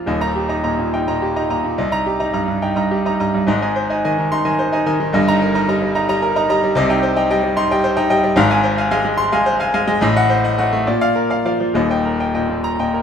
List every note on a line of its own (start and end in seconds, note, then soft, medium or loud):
0.00 0.10 F3 medium
0.00 0.10 D4 medium
0.00 0.10 F4 medium
0.06 1.73 D#1 medium
0.06 1.74 D#2 medium
0.06 0.19 D#5 medium
0.21 0.44 D#4 medium
0.21 0.34 D#5 medium
0.21 0.34 A#5 loud
0.36 0.59 G4 medium
0.49 0.73 D#4 medium
0.49 0.62 D#5 medium
0.49 0.62 A#5 medium
0.63 0.77 A#2 medium
0.63 0.77 D#5 medium
0.63 0.77 A#5 medium
0.79 1.02 A#2 medium
0.94 1.16 D#4 medium
0.94 1.16 G5 medium
1.08 1.30 A#2 medium
1.08 1.20 D#5 medium
1.08 1.21 A#5 medium
1.22 1.45 G4 medium
1.36 1.59 D#4 medium
1.36 1.48 D#5 medium
1.36 1.49 A#5 medium
1.50 1.63 A#2 medium
1.50 1.63 D#5 medium
1.50 1.63 A#5 medium
1.64 1.78 A#2 medium
1.78 3.44 C2 medium
1.78 1.90 D#5 medium
1.92 2.14 D#4 medium
1.92 2.04 D#5 medium
1.92 2.05 A#5 loud
2.06 2.29 G4 medium
2.20 2.43 D#4 medium
2.20 2.32 D#5 medium
2.20 2.33 A#5 medium
2.33 2.46 G2 medium
2.33 2.47 D#5 medium
2.33 2.47 A#5 medium
2.48 2.71 G2 medium
2.62 2.86 D#4 medium
2.62 2.85 G5 medium
2.76 2.99 G2 medium
2.76 2.89 D#5 medium
2.76 2.90 A#5 medium
2.91 3.14 G4 medium
3.06 3.28 D#4 medium
3.06 3.18 D#5 medium
3.06 3.19 A#5 medium
3.20 3.32 G2 medium
3.20 3.32 D#5 medium
3.20 3.33 A#5 medium
3.34 3.48 G2 medium
3.47 5.09 G#1 medium
3.47 5.10 G#2 loud
3.47 3.61 D#5 medium
3.62 3.84 D#4 medium
3.62 3.74 D#5 medium
3.62 3.74 G#5 medium
3.76 3.98 C5 medium
3.90 4.12 D#4 medium
3.90 4.02 D#5 medium
3.90 4.02 G#5 medium
4.05 4.17 D#3 medium
4.05 4.16 D#5 medium
4.05 4.16 G#5 medium
4.18 4.40 D#3 medium
4.32 4.53 D#4 medium
4.32 4.53 C6 loud
4.45 4.67 D#3 medium
4.45 4.57 D#5 medium
4.45 4.57 G#5 medium
4.59 4.81 C5 medium
4.72 4.94 D#4 medium
4.72 4.85 D#5 medium
4.72 4.85 G#5 medium
4.86 4.99 D#3 medium
4.86 4.98 D#5 medium
4.86 4.99 G#5 medium
5.00 5.14 D#3 medium
5.13 6.72 G1 loud
5.13 6.73 G2 loud
5.13 5.27 D#5 medium
5.28 5.49 D#4 medium
5.28 5.40 D#5 medium
5.28 5.40 A#5 loud
5.42 5.63 A#4 medium
5.55 5.77 D#4 medium
5.55 5.67 D#5 medium
5.55 5.67 A#5 medium
5.69 5.80 G3 medium
5.69 5.81 D#5 medium
5.69 5.81 A#5 medium
5.82 6.04 G3 medium
5.95 6.17 D#4 medium
5.95 6.08 A#5 medium
6.09 6.31 G3 medium
6.09 6.21 D#5 medium
6.09 6.22 A#5 loud
6.22 6.44 A#4 loud
6.36 6.58 D#4 medium
6.36 6.48 D#5 medium
6.36 6.48 A#5 medium
6.49 6.62 G3 medium
6.49 6.62 D#5 medium
6.49 6.62 A#5 loud
6.63 6.77 G3 loud
6.75 8.32 C2 loud
6.75 8.33 C3 loud
6.75 6.88 D#5 loud
6.89 7.11 D#4 medium
6.89 7.02 D#5 medium
6.89 7.02 G5 medium
7.03 7.24 C5 medium
7.16 7.38 D#4 medium
7.16 7.29 D#5 medium
7.16 7.29 G5 medium
7.30 7.42 G3 loud
7.30 7.42 D#5 loud
7.30 7.43 G5 loud
7.43 7.65 G3 medium
7.57 7.78 D#4 loud
7.57 7.78 C6 loud
7.71 7.92 G3 loud
7.71 7.83 D#5 medium
7.71 7.83 G5 loud
7.84 8.05 C5 loud
7.97 8.18 D#4 loud
7.97 8.09 D#5 loud
7.97 8.09 G5 loud
8.10 8.22 G3 loud
8.10 8.22 D#5 loud
8.10 8.22 G5 loud
8.24 8.37 G3 loud
8.36 9.97 G#1 loud
8.36 9.98 G#2 loud
8.36 8.48 F5 loud
8.50 8.62 F5 medium
8.50 8.63 G#5 loud
8.63 8.85 C5 loud
8.78 8.90 F5 medium
8.78 8.90 G#5 loud
8.91 9.03 G#3 loud
8.91 9.04 F5 loud
8.91 9.04 G#5 loud
9.04 9.26 G#3 loud
9.18 9.40 C6 loud
9.32 9.54 G#3 loud
9.32 9.45 F5 loud
9.32 9.45 G#5 loud
9.46 9.68 C5 loud
9.60 9.72 F5 medium
9.60 9.73 G#5 loud
9.74 9.86 G#3 loud
9.74 9.86 F5 medium
9.74 9.87 G#5 loud
9.87 10.02 G#3 loud
10.01 10.83 A1 loud
10.01 10.84 A2 loud
10.01 10.15 D#5 loud
10.16 10.28 D#5 medium
10.16 10.29 F#5 loud
10.30 10.52 C5 medium
10.44 10.57 D#5 medium
10.44 10.57 F#5 loud
10.58 10.71 A3 medium
10.58 10.70 D#5 medium
10.58 10.71 F#5 loud
10.73 10.86 A3 medium
10.87 11.73 A#2 loud
10.87 11.00 D5 medium
11.01 11.14 D5 medium
11.01 11.14 F5 loud
11.16 11.39 A#4 medium
11.30 11.43 D5 medium
11.30 11.44 F5 medium
11.45 11.59 F3 medium
11.45 11.59 D5 medium
11.45 11.59 F5 medium
11.60 11.75 F3 medium
11.74 13.02 D#1 medium
11.74 13.02 D#2 loud
11.74 11.89 D#5 medium
11.90 12.04 D#5 medium
11.90 12.04 G5 medium
12.05 12.29 A#4 medium
12.20 12.33 D#5 medium
12.20 12.33 G5 medium
12.35 12.48 A#2 medium
12.35 12.48 D#5 medium
12.35 12.48 G5 medium
12.49 12.73 A#2 medium
12.64 12.88 A#5 loud
12.79 13.02 A#2 medium
12.79 12.93 D#5 medium
12.79 12.93 G5 medium
12.94 13.02 A#4 medium